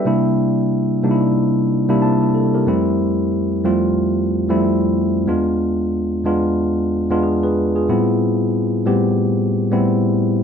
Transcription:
X:1
M:4/4
L:1/16
Q:"Swing 16ths" 1/4=92
K:Ephr
V:1 name="Tine electric piano"
[eg] z8 z3 [CEa] [EG] A [G_B]- | [G_B] z12 z3 | z12 [F^G] [GB]2 [FG]- | [F^G] z12 z3 |]
V:2 name="Tine electric piano"
[C,G,_B,DE]4- [C,G,B,DE] z [C,G,B,D^DE]4 z [C,G,B,=DE]4 z | [F,,G,A,CE]4- [F,,G,A,CE] z [F,,G,A,CF]4 z [F,,G,A,CE]4 z | [E,,^G,B,DF]4- [E,,G,B,DF] z [E,,G,B,DF]4 z [E,,G,B,DF]4 z | [A,,G,B,CE]4- [A,,G,B,CE] z [A,,G,B,CG]4 z [A,,G,B,CE]4 z |]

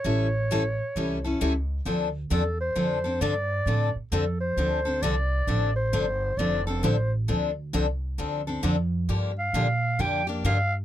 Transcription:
X:1
M:4/4
L:1/8
Q:"Swing" 1/4=133
K:Dm
V:1 name="Clarinet"
^c6 z2 | z2 A c3 d2- | d z A c3 d2- | d c3 d A c z |
z8 | z f3 g d f z |]
V:2 name="Steel-string acoustic guitar"
[E,G,^CEA] z [E,G,CEA] z [E,G,CEA] [CEA] [E,G,CEA] z | [D,F,CDA] z [D,F,CDA] z [D,F,CDA] [CDA] [D,F,CDA] z | [D,F,CDA] z [D,F,CDA] z [D,F,CDA] [CDA] [D,F,CDA] z | [D,F,CDA] z [D,F,CDA] z [D,F,CDA] [CDA] [D,F,CDA] z |
[D,F,CDA] z [D,F,CDA] z [D,F,CDA] [CDA] [D,F,CDA] z | [D,F,B,DG] z [D,F,B,DG] z [D,F,B,DG] [B,DG] [D,F,B,DG] z |]
V:3 name="Upright bass" clef=bass
A,,,4 ^B,,,2 ^C,,2 | D,,2 E,,2 F,,2 G,,2 | A,, z F,,2 D,,2 C,,2 | A,,,2 G,,,2 F,,,2 A,,,2 |
D,,2 C,,2 D,,2 F,,2 | G,,2 B,,2 F,,2 G,,2 |]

